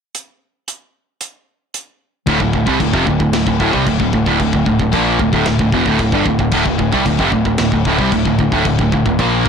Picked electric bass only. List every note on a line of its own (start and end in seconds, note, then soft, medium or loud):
2.28 2.40 D1 loud
2.40 2.53 D1 medium
2.53 2.66 D1 medium
2.67 2.79 C2 medium
2.80 2.92 D1 medium
2.93 3.06 F1 loud
3.07 3.19 D1 medium
3.20 3.32 D1 medium
3.32 3.45 D1 medium
3.47 3.59 D1 medium
3.60 3.72 D1 loud
3.73 3.86 C2 medium
3.86 3.99 D1 medium
4.00 4.12 D1 medium
4.13 4.26 D1 medium
4.27 4.39 D1 medium
4.40 4.52 D1 medium
4.53 4.66 D1 medium
4.66 4.79 D1 medium
4.80 4.92 D1 medium
4.93 5.18 A#1 medium
5.19 5.32 D1 medium
5.33 5.46 D1 loud
5.47 5.59 D1 medium
5.60 5.72 D1 medium
5.73 5.85 E1 loud
5.86 5.98 D1 medium
6.00 6.12 D1 medium
6.12 6.25 G1 medium
6.25 6.38 D1 medium
6.39 6.52 D1 medium
6.52 6.65 D1 loud
6.65 6.78 D1 medium
6.79 6.92 D1 medium
6.92 7.05 C2 medium
7.06 7.18 D1 medium
7.19 7.32 F1 loud
7.32 7.45 D1 medium
7.45 7.58 D1 medium
7.59 7.71 D1 medium
7.72 7.85 D1 medium
7.85 7.98 D1 loud
7.98 8.11 C2 medium
8.13 8.25 D1 medium
8.26 8.38 D1 medium
8.38 8.51 D1 medium
8.52 8.65 D1 loud
8.66 8.78 D1 medium
8.79 8.92 D1 medium
8.92 9.05 D1 medium
9.06 9.18 D1 medium
9.19 9.44 A#1 loud
9.46 9.49 D1 medium